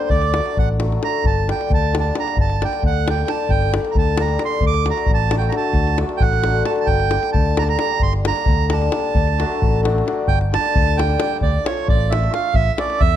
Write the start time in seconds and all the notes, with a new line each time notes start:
Already playing: D3 G3
0.10 D2 D5, davul low
0.22 davul high
0.33 D3 F#3 A3 D4, davul high
0.46 davul high
0.57 A1 F#5, davul low
0.79 D3 F#3 A3 D4, davul high
0.92 davul high
1.01 D3 F#3 A3 D4 A#5, davul high
1.24 G1 A5, davul low
1.47 D3 G3 A#3 D4 G5, davul high
1.61 davul high
1.70 D2 A5, davul low
1.92 D3 G3 A#3 D4, davul high
2.00 A5
2.04 davul high
2.14 D3 G3 A#3 D4, davul high
2.20 A#5
2.28 davul high
2.37 G1, davul low
2.41 A5
2.50 davul high
2.61 D3 G3 A#3 D4, davul high
2.65 G5
2.73 davul high
2.83 D2 F#5, davul low
3.06 D3 G3 A#3 D4, davul high
3.10 G5
3.18 davul high
3.26 D3 G3 A#3 D4 A5, davul high
3.49 G1 G5, davul low
3.62 davul high
3.70 D3 G3 A#3 D4, davul high
3.85 davul high
3.91 A#5, davul low
3.96 D2 A5
4.18 D3 G3 A#3 D4 A#5, davul high
4.28 davul high
4.38 D3 G3 A#3 D4, davul high
4.45 C6
4.61 D2, davul low
4.67 D6
4.74 davul high
4.85 D3 F#3 A3 D4, davul high
4.91 A#5
4.98 davul high
5.06 A1, davul low
5.14 A5
5.30 D3 F#3 A3 D4, davul high
5.38 G5, davul high
5.49 D3 F#3 A#5, davul high
5.53 A3 D4 A5
5.73 D2, davul low
5.87 davul high
5.98 D3 F#3 A3 D4, davul high
6.09 davul high
6.17 A1 G5, davul low
6.22 F#5
6.33 davul high
6.44 D3 F#3 A3 D4, davul high
6.65 D3 F#3 A3 D4 A5, davul high
6.76 davul high
6.80 A5
6.86 G1 G5, davul low
7.00 davul high
7.11 D3 G3 A#3 D4, davul high
7.23 davul high
7.33 D2 A5, davul low
7.57 D3 G3 A#3 D4 A#5, davul high
7.61 A5
7.69 A#5, davul high
7.78 D3 G3 A#3 D4 A#5, davul high
8.00 G1 C6, davul low
8.13 davul high
8.24 D3 G3 A#3 D4 A#5, davul high
8.36 davul high
8.46 D2, davul low
8.70 D3 G3 A#3 D4 A5, davul high
8.82 davul high
8.92 D3 G3 A#3 D4, davul high
9.15 D2, davul low
9.27 davul high
9.38 D3 F#3 A3 D4, davul high
9.52 davul high
9.62 A1, davul low
9.83 D3 F#3 A3 D4, davul high
9.98 davul high
10.05 D3 F#3 A3 D4, davul high
10.28 G1 G5, davul low
10.41 davul high
10.52 D3 G3 A#3 D4 A5, davul high
10.65 davul high
10.76 D2, davul low
10.88 davul high
10.96 D3 G3 A#3 D4 G5, davul high
11.10 davul high
11.19 D3 G3 A#3 D4, davul high
11.41 D2 D5, davul low
11.64 F3 A3 D4 F4 C#5, davul high
11.77 davul high
11.88 A1 D5, davul low
12.09 F3 A3 D4 F4 E5, davul high
12.24 davul high
12.30 F3 A3 D4 F4, davul high
12.34 F5
12.54 A1 E5, davul low
12.77 A3 C#4 E4 A4 D5, davul high
12.90 davul high
13.00 E2 E5, davul low